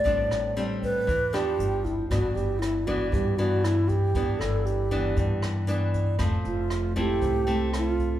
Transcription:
<<
  \new Staff \with { instrumentName = "Alto flute" } { \time 4/4 \key g \major \tempo 4 = 117 d''4 r8 b'4 g'4 e'8 | fis'8 g'8 e'8 fis'8 g'8 fis'8 e'8 g'8~ | g'8 a'8 g'4. r4. | r8 f'4 g'4. f'4 | }
  \new Staff \with { instrumentName = "Nylon-string guitar" } { \time 4/4 \key g \major << { <g c' d'>4 <g c' d'>4 r8 <f b d'>4. | <e b d'>4. <e b d'>4 <e b d'>4. | <e b d'>4. <e b d'>4. <e b d'>4 | <a c'>4. <a c' e'>4 <a c'>4. | } \\ { a,2 e4 r4 | g,2 g,2 | g,2 g,2 | f2 c2 | } >> }
  \new Staff \with { instrumentName = "Upright bass" } { \clef bass \time 4/4 \key g \major a,,8 a,,4. e,4 g,,4 | g,,8 g,,4. g,2 | g,,8 g,,4. g,2 | f,,8 f,,4. c,2 | }
  \new DrumStaff \with { instrumentName = "Drums" } \drummode { \time 4/4 <hh bd>8 <hh ss>8 hh8 <hh bd>8 <hh bd>8 <hh ss>8 hh8 <hh bd>8 | <hh bd ss>8 hh8 <hh ss>8 <hh bd>8 <hh bd>8 hh8 <hh ss>8 <hh bd>8 | <hh bd>8 <hh ss>8 hh8 <hh bd>8 <hh bd>8 <hh ss>8 hh8 <hh bd>8 | <hh bd ss>8 hh8 <hh ss>8 <hh bd>8 <hh bd>8 hh8 <hh ss>8 <hh bd>8 | }
>>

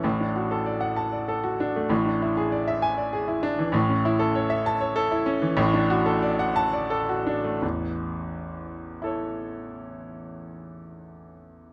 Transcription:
\new Staff \with { instrumentName = "Grand piano" } { \time 3/4 \key a \major \tempo 4 = 95 << { r4. a''8 r4 | r4. gis''8 r4 | r4. a''8 r4 | r4. a''8 r4 |
r2 <e' a' cis''>4~ | <e' a' cis''>2. | } \\ { <a,, a,>16 d'16 fis'16 a'16 d''16 fis''8 d''16 a'16 fis'16 d'16 a16 | <a,, a,>16 d'16 e'16 gis'16 d''16 e''8 d''16 gis'16 e'16 d'16 e16 | <a,, a,>16 cis'16 e'16 a'16 cis''16 e''8 cis''16 a'16 e'16 cis'16 e16 | <a,, a,>16 d'16 fis'16 a'16 d''16 fis''8 d''16 a'16 fis'16 d'16 a16 |
<a,, e,>2.~ | <a,, e,>2. | } >> }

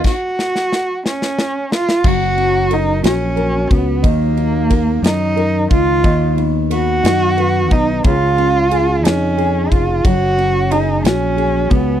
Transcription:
<<
  \new Staff \with { instrumentName = "Cello" } { \time 6/8 \key fis \major \tempo 4. = 60 fis'4. cis'4 eis'8 | fis'4 dis'8 cis'4 b8 | ais4. dis'4 eis'8~ | eis'8 r8 fis'4. dis'8 |
eis'4. cis'4 eis'8 | fis'4 dis'8 cis'4 b8 | }
  \new Staff \with { instrumentName = "Nylon-string guitar" } { \time 6/8 \key fis \major r2. | fis8 cis'8 ais'8 fis'8 ais'8 cis'8 | dis8 dis'8 ais'4 ais'8 dis'8 | dis8 b8 b'8 dis'8 b'8 b8 |
cis8 cis'8 gis'8 dis'8 gis'8 cis'8 | fis8 cis'8 gis'8 fis'8 gis'8 cis'8 | }
  \new Staff \with { instrumentName = "Fingered electric bass" } { \clef bass \time 6/8 \key fis \major r2. | fis,,4. ais,,4 cis,8 | dis,4. fis,4 cis,8 | dis,4. fis,4 b,,8 |
cis,4. eis,4 eis,,8 | fis,,4. ais,,4 cis,8 | }
  \new DrumStaff \with { instrumentName = "Drums" } \drummode { \time 6/8 <cymc bd sn>8 sn16 sn16 sn8 sn16 sn16 sn8 sn16 sn16 | <cymc bd>8 cymr8 cymr8 <cymr sn>8 cymr8 <bd cymr>8 | <bd cymr>8 cymr8 <bd cymr>8 <cymr sn>8 cymr8 <bd cymr>8 | <bd cymr>8 cymr8 cymr8 <cymr sn>8 cymr8 <bd cymr>8 |
<bd cymr>8 cymr8 cymr8 <cymr sn>8 cymr8 <bd cymr>8 | <bd cymr>8 cymr8 cymr8 <cymr sn>8 cymr8 <bd cymr>8 | }
>>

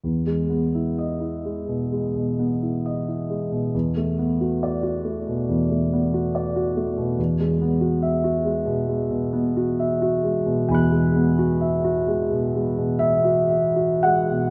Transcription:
<<
  \new Staff \with { instrumentName = "Grand piano" } { \time 4/4 \key e \major \tempo 4 = 66 << { r1 | r1 | r1 | <gis'' b'' fis'''>1 | } \\ { r1 | r1 | r1 | r2 r8 e''4 fis''8 | } >> }
  \new Staff \with { instrumentName = "Grand piano" } { \time 4/4 \key e \major e,16 gis16 b16 e'16 dis''16 e'16 gis16 b,16 gis16 b,16 b16 e'16 dis''16 e'16 gis16 b,16 | e,16 a16 b16 fis'16 d''16 fis'16 a16 b,16 e,16 a16 b16 fis'16 d''16 fis'16 a16 b,16 | e,16 gis16 b16 fis'16 e''16 fis'16 gis16 b,16 gis16 b,16 b16 fis'16 e''16 fis'16 gis16 b,16 | e,16 gis16 b16 fis'16 e''16 fis'16 gis16 b,16 gis16 b,16 b16 fis'16 e''16 fis'16 gis16 b,16 | }
>>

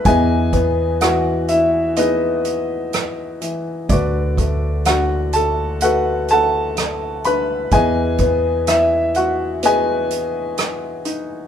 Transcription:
<<
  \new Staff \with { instrumentName = "Upright piano" } { \time 4/4 \key e \major \tempo 4 = 63 <gis' b' dis'' gis''>4 <fis' fis''>8 <e' e''>8 <dis' gis' b' dis''>4. r8 | <d' fis' b' d''>4 <fis' fis''>8 <a' a''>8 <fis' a' b' fis''>8 <a' fis'' a''>4 <b' b''>8 | <gis' b' dis'' gis''>4 e''8 <fis' fis''>8 <gis' b' dis'' gis''>4. r8 | }
  \new Staff \with { instrumentName = "Upright piano" } { \time 4/4 \key e \major e8 b8 e4 b4. e8 | d8 a8 d4 a4. d8 | e8 b8 e'4 b4. dis'8 | }
  \new Staff \with { instrumentName = "Upright bass" } { \clef bass \time 4/4 \key e \major e,1 | d,1 | e,1 | }
  \new DrumStaff \with { instrumentName = "Drums" } \drummode { \time 4/4 <hh bd>8 <hh bd>8 <hh ss>8 hh8 hh8 hh8 <hh ss>8 hh8 | <hh bd>8 <hh bd>8 <hh ss>8 hh8 hh8 hh8 <hh ss>8 hh8 | <hh bd>8 <hh bd>8 <hh ss>8 hh8 hh8 hh8 <hh ss>8 hh8 | }
>>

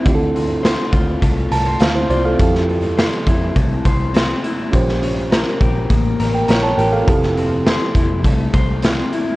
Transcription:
<<
  \new Staff \with { instrumentName = "Reed electric piano" } { \time 4/4 \key f \major \tempo 4 = 102 << { r2 r8 a''8 f''16 <e' c''>16 <f' c'' d''>16 <a' f''>16~ | <a' f''>16 r2. r8. | r2 r8. <bes' g''>16 <des'' bes''>16 <des'' a''>16 <bes' g''>16 <a' f''>16~ | <a' f''>16 r2. r8. | } \\ { <c' e' f' g' a'>1 | <c' e' g' a'>1 | <des' f' g' c''>1 | <c' e' g' a'>1 | } >> }
  \new Staff \with { instrumentName = "Clean electric guitar" } { \time 4/4 \key f \major d8 c'8 c''8 f'8 a8 bes'16 c''16 c'8 f'8 | f8 c'8 c''8 e'8 a8 c''8 c'8 e'8 | bes,8 des'8 bes'8 g'8 bes8 bes'8 des'8 g'8 | f8 c'8 c''8 e'8 a8 c''8 c'8 e'8 | }
  \new Staff \with { instrumentName = "Picked electric bass" } { \clef bass \time 4/4 \key f \major d,4~ d,16 r16 d,8 c,8 c,8 d,8 c,8 | f,4~ f,16 r16 f,8 c,8 c,4 r8 | bes,,4~ bes,,16 r16 bes,,8 a,,8 a,,8 bes,,8 a,,8 | f,,4~ f,,16 r16 f,,8 c,8 c,4 r8 | }
  \new DrumStaff \with { instrumentName = "Drums" } \drummode { \time 4/4 <hh bd>8 hh8 <hh sn>8 <hh bd>8 <hh bd>8 hh8 <hh sn>8 hh8 | <hh bd>16 sn16 hh8 <hh sn>8 <hh bd>8 <hh bd>8 <hh bd>8 <hh sn>8 hh8 | <hh bd>16 sn16 hh8 <hh sn>8 <hh bd>8 <hh bd>8 hh8 <hh sn>8 hh8 | <hh bd>16 sn16 hh8 <hh sn>8 <hh bd>8 <hh bd>8 <hh bd>8 <hh sn>8 hh8 | }
>>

